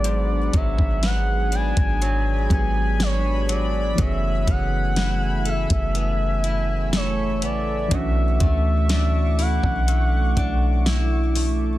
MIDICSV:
0, 0, Header, 1, 7, 480
1, 0, Start_track
1, 0, Key_signature, 3, "minor"
1, 0, Tempo, 983607
1, 22, Time_signature, 4, 2, 24, 8
1, 5750, End_track
2, 0, Start_track
2, 0, Title_t, "Analog synth pad"
2, 0, Program_c, 0, 89
2, 0, Note_on_c, 0, 62, 78
2, 0, Note_on_c, 0, 68, 89
2, 0, Note_on_c, 0, 78, 81
2, 0, Note_on_c, 0, 83, 96
2, 732, Note_off_c, 0, 78, 0
2, 743, Note_on_c, 0, 80, 77
2, 1923, Note_off_c, 0, 62, 0
2, 1923, Note_off_c, 0, 68, 0
2, 1931, Note_off_c, 0, 80, 0
2, 1943, Note_on_c, 0, 57, 83
2, 1943, Note_on_c, 0, 76, 77
2, 1943, Note_on_c, 0, 80, 73
2, 3842, Note_off_c, 0, 83, 0
2, 3844, Note_off_c, 0, 80, 0
2, 3864, Note_on_c, 0, 85, 75
2, 3864, Note_on_c, 0, 86, 93
2, 5750, Note_off_c, 0, 57, 0
2, 5750, Note_off_c, 0, 76, 0
2, 5750, Note_off_c, 0, 85, 0
2, 5750, Note_off_c, 0, 86, 0
2, 5750, End_track
3, 0, Start_track
3, 0, Title_t, "Soft synth lead"
3, 0, Program_c, 1, 80
3, 0, Note_on_c, 1, 74, 98
3, 274, Note_on_c, 1, 76, 103
3, 281, Note_off_c, 1, 74, 0
3, 514, Note_on_c, 1, 78, 108
3, 521, Note_off_c, 1, 76, 0
3, 755, Note_on_c, 1, 80, 117
3, 762, Note_off_c, 1, 78, 0
3, 1228, Note_off_c, 1, 80, 0
3, 1236, Note_on_c, 1, 80, 111
3, 1475, Note_on_c, 1, 73, 102
3, 1482, Note_off_c, 1, 80, 0
3, 1709, Note_off_c, 1, 73, 0
3, 1717, Note_on_c, 1, 74, 97
3, 1958, Note_on_c, 1, 76, 120
3, 1966, Note_off_c, 1, 74, 0
3, 2198, Note_on_c, 1, 78, 116
3, 2205, Note_off_c, 1, 76, 0
3, 2670, Note_off_c, 1, 78, 0
3, 2677, Note_on_c, 1, 76, 108
3, 3370, Note_off_c, 1, 76, 0
3, 3397, Note_on_c, 1, 73, 93
3, 3614, Note_off_c, 1, 73, 0
3, 3635, Note_on_c, 1, 74, 90
3, 3873, Note_on_c, 1, 76, 108
3, 3881, Note_off_c, 1, 74, 0
3, 4108, Note_off_c, 1, 76, 0
3, 4114, Note_on_c, 1, 76, 109
3, 4595, Note_on_c, 1, 78, 100
3, 4602, Note_off_c, 1, 76, 0
3, 5548, Note_off_c, 1, 78, 0
3, 5750, End_track
4, 0, Start_track
4, 0, Title_t, "Steel-string acoustic guitar"
4, 0, Program_c, 2, 25
4, 0, Note_on_c, 2, 59, 77
4, 23, Note_on_c, 2, 44, 91
4, 263, Note_on_c, 2, 54, 68
4, 501, Note_off_c, 2, 59, 0
4, 503, Note_on_c, 2, 59, 63
4, 744, Note_on_c, 2, 62, 70
4, 981, Note_off_c, 2, 54, 0
4, 983, Note_on_c, 2, 54, 73
4, 1222, Note_off_c, 2, 59, 0
4, 1223, Note_on_c, 2, 59, 62
4, 1457, Note_off_c, 2, 62, 0
4, 1463, Note_on_c, 2, 62, 71
4, 1701, Note_off_c, 2, 54, 0
4, 1703, Note_on_c, 2, 54, 64
4, 1941, Note_off_c, 2, 54, 0
4, 1943, Note_off_c, 2, 44, 0
4, 1943, Note_on_c, 2, 54, 93
4, 1991, Note_off_c, 2, 62, 0
4, 2182, Note_off_c, 2, 59, 0
4, 2184, Note_on_c, 2, 59, 65
4, 2423, Note_on_c, 2, 64, 60
4, 2662, Note_on_c, 2, 69, 74
4, 2900, Note_off_c, 2, 59, 0
4, 2902, Note_on_c, 2, 59, 70
4, 3140, Note_off_c, 2, 64, 0
4, 3141, Note_on_c, 2, 64, 63
4, 3379, Note_off_c, 2, 69, 0
4, 3381, Note_on_c, 2, 69, 74
4, 3620, Note_off_c, 2, 59, 0
4, 3622, Note_on_c, 2, 59, 59
4, 3860, Note_on_c, 2, 47, 90
4, 3863, Note_off_c, 2, 54, 0
4, 4101, Note_on_c, 2, 57, 65
4, 4115, Note_off_c, 2, 59, 0
4, 4342, Note_on_c, 2, 62, 60
4, 4357, Note_off_c, 2, 64, 0
4, 4581, Note_on_c, 2, 64, 68
4, 4820, Note_off_c, 2, 57, 0
4, 4822, Note_on_c, 2, 57, 71
4, 5055, Note_off_c, 2, 62, 0
4, 5061, Note_on_c, 2, 62, 60
4, 5089, Note_off_c, 2, 69, 0
4, 5300, Note_off_c, 2, 64, 0
4, 5302, Note_on_c, 2, 64, 75
4, 5541, Note_off_c, 2, 57, 0
4, 5543, Note_on_c, 2, 57, 58
4, 5750, Note_off_c, 2, 47, 0
4, 5750, Note_off_c, 2, 57, 0
4, 5750, Note_off_c, 2, 62, 0
4, 5750, Note_off_c, 2, 64, 0
4, 5750, End_track
5, 0, Start_track
5, 0, Title_t, "Synth keys"
5, 0, Program_c, 3, 88
5, 0, Control_c, 3, 64, 127
5, 0, Note_on_c, 3, 54, 69
5, 0, Note_on_c, 3, 56, 62
5, 0, Note_on_c, 3, 59, 61
5, 0, Note_on_c, 3, 62, 60
5, 0, Note_on_c, 3, 68, 74
5, 1196, Note_off_c, 3, 54, 0
5, 1200, Note_off_c, 3, 56, 0
5, 1204, Note_off_c, 3, 59, 0
5, 1208, Note_off_c, 3, 62, 0
5, 1212, Note_off_c, 3, 68, 0
5, 1216, Note_on_c, 3, 54, 51
5, 1221, Note_on_c, 3, 56, 47
5, 1224, Note_on_c, 3, 59, 47
5, 1229, Note_on_c, 3, 62, 45
5, 1233, Note_on_c, 3, 67, 45
5, 1260, Note_off_c, 3, 67, 0
5, 1264, Note_on_c, 3, 68, 57
5, 1927, Note_on_c, 3, 52, 67
5, 1935, Note_on_c, 3, 57, 62
5, 1938, Note_off_c, 3, 59, 0
5, 1939, Note_off_c, 3, 54, 0
5, 1942, Note_off_c, 3, 56, 0
5, 1944, Note_on_c, 3, 59, 63
5, 1946, Note_off_c, 3, 62, 0
5, 1949, Control_c, 3, 64, 0
5, 1951, Note_on_c, 3, 49, 64
5, 1955, Note_off_c, 3, 68, 0
5, 1960, Note_on_c, 3, 68, 76
5, 2036, Control_c, 3, 64, 127
5, 3835, Note_off_c, 3, 52, 0
5, 3839, Note_off_c, 3, 57, 0
5, 3844, Note_off_c, 3, 59, 0
5, 3846, Note_on_c, 3, 52, 66
5, 3847, Note_off_c, 3, 49, 0
5, 3852, Note_off_c, 3, 68, 0
5, 3854, Note_on_c, 3, 57, 60
5, 3862, Note_on_c, 3, 61, 59
5, 3868, Control_c, 3, 64, 0
5, 3871, Note_on_c, 3, 62, 59
5, 3879, Note_on_c, 3, 66, 76
5, 3960, Control_c, 3, 64, 127
5, 5750, Note_off_c, 3, 52, 0
5, 5750, Note_off_c, 3, 57, 0
5, 5750, Note_off_c, 3, 61, 0
5, 5750, Note_off_c, 3, 62, 0
5, 5750, Note_off_c, 3, 66, 0
5, 5750, End_track
6, 0, Start_track
6, 0, Title_t, "808-style bass"
6, 0, Program_c, 4, 38
6, 0, Note_on_c, 4, 32, 95
6, 243, Note_off_c, 4, 32, 0
6, 264, Note_on_c, 4, 32, 99
6, 378, Note_off_c, 4, 32, 0
6, 384, Note_on_c, 4, 32, 97
6, 844, Note_off_c, 4, 32, 0
6, 864, Note_on_c, 4, 32, 100
6, 1209, Note_off_c, 4, 32, 0
6, 1223, Note_on_c, 4, 32, 102
6, 1923, Note_off_c, 4, 32, 0
6, 1946, Note_on_c, 4, 30, 113
6, 2175, Note_off_c, 4, 30, 0
6, 2184, Note_on_c, 4, 30, 106
6, 2764, Note_off_c, 4, 30, 0
6, 2784, Note_on_c, 4, 30, 104
6, 3625, Note_on_c, 4, 33, 92
6, 3632, Note_off_c, 4, 30, 0
6, 3852, Note_off_c, 4, 33, 0
6, 3863, Note_on_c, 4, 35, 119
6, 4093, Note_off_c, 4, 35, 0
6, 4103, Note_on_c, 4, 38, 102
6, 4683, Note_off_c, 4, 38, 0
6, 4703, Note_on_c, 4, 35, 108
6, 5049, Note_off_c, 4, 35, 0
6, 5061, Note_on_c, 4, 35, 101
6, 5750, Note_off_c, 4, 35, 0
6, 5750, End_track
7, 0, Start_track
7, 0, Title_t, "Drums"
7, 21, Note_on_c, 9, 42, 72
7, 70, Note_off_c, 9, 42, 0
7, 261, Note_on_c, 9, 42, 71
7, 262, Note_on_c, 9, 36, 97
7, 310, Note_off_c, 9, 42, 0
7, 311, Note_off_c, 9, 36, 0
7, 383, Note_on_c, 9, 36, 95
7, 432, Note_off_c, 9, 36, 0
7, 501, Note_on_c, 9, 42, 79
7, 503, Note_on_c, 9, 38, 111
7, 550, Note_off_c, 9, 42, 0
7, 552, Note_off_c, 9, 38, 0
7, 742, Note_on_c, 9, 42, 49
7, 791, Note_off_c, 9, 42, 0
7, 863, Note_on_c, 9, 42, 81
7, 864, Note_on_c, 9, 36, 96
7, 912, Note_off_c, 9, 36, 0
7, 912, Note_off_c, 9, 42, 0
7, 986, Note_on_c, 9, 42, 68
7, 1035, Note_off_c, 9, 42, 0
7, 1221, Note_on_c, 9, 36, 97
7, 1223, Note_on_c, 9, 42, 62
7, 1270, Note_off_c, 9, 36, 0
7, 1272, Note_off_c, 9, 42, 0
7, 1464, Note_on_c, 9, 38, 112
7, 1465, Note_on_c, 9, 42, 77
7, 1512, Note_off_c, 9, 38, 0
7, 1514, Note_off_c, 9, 42, 0
7, 1704, Note_on_c, 9, 42, 85
7, 1753, Note_off_c, 9, 42, 0
7, 1943, Note_on_c, 9, 36, 114
7, 1943, Note_on_c, 9, 42, 70
7, 1992, Note_off_c, 9, 36, 0
7, 1992, Note_off_c, 9, 42, 0
7, 2183, Note_on_c, 9, 36, 96
7, 2184, Note_on_c, 9, 42, 76
7, 2232, Note_off_c, 9, 36, 0
7, 2233, Note_off_c, 9, 42, 0
7, 2423, Note_on_c, 9, 42, 84
7, 2424, Note_on_c, 9, 38, 114
7, 2471, Note_off_c, 9, 42, 0
7, 2473, Note_off_c, 9, 38, 0
7, 2662, Note_on_c, 9, 42, 51
7, 2711, Note_off_c, 9, 42, 0
7, 2782, Note_on_c, 9, 42, 86
7, 2783, Note_on_c, 9, 36, 100
7, 2831, Note_off_c, 9, 42, 0
7, 2832, Note_off_c, 9, 36, 0
7, 2904, Note_on_c, 9, 42, 68
7, 2952, Note_off_c, 9, 42, 0
7, 3142, Note_on_c, 9, 42, 61
7, 3191, Note_off_c, 9, 42, 0
7, 3381, Note_on_c, 9, 38, 110
7, 3383, Note_on_c, 9, 42, 78
7, 3430, Note_off_c, 9, 38, 0
7, 3431, Note_off_c, 9, 42, 0
7, 3622, Note_on_c, 9, 42, 83
7, 3670, Note_off_c, 9, 42, 0
7, 3861, Note_on_c, 9, 42, 69
7, 3862, Note_on_c, 9, 36, 109
7, 3910, Note_off_c, 9, 42, 0
7, 3911, Note_off_c, 9, 36, 0
7, 4101, Note_on_c, 9, 42, 75
7, 4102, Note_on_c, 9, 36, 102
7, 4150, Note_off_c, 9, 42, 0
7, 4151, Note_off_c, 9, 36, 0
7, 4340, Note_on_c, 9, 42, 82
7, 4342, Note_on_c, 9, 38, 109
7, 4389, Note_off_c, 9, 42, 0
7, 4391, Note_off_c, 9, 38, 0
7, 4581, Note_on_c, 9, 46, 63
7, 4630, Note_off_c, 9, 46, 0
7, 4702, Note_on_c, 9, 36, 92
7, 4751, Note_off_c, 9, 36, 0
7, 4821, Note_on_c, 9, 42, 69
7, 4870, Note_off_c, 9, 42, 0
7, 5060, Note_on_c, 9, 36, 98
7, 5060, Note_on_c, 9, 42, 60
7, 5108, Note_off_c, 9, 36, 0
7, 5109, Note_off_c, 9, 42, 0
7, 5300, Note_on_c, 9, 38, 115
7, 5302, Note_on_c, 9, 42, 75
7, 5349, Note_off_c, 9, 38, 0
7, 5350, Note_off_c, 9, 42, 0
7, 5541, Note_on_c, 9, 46, 88
7, 5590, Note_off_c, 9, 46, 0
7, 5750, End_track
0, 0, End_of_file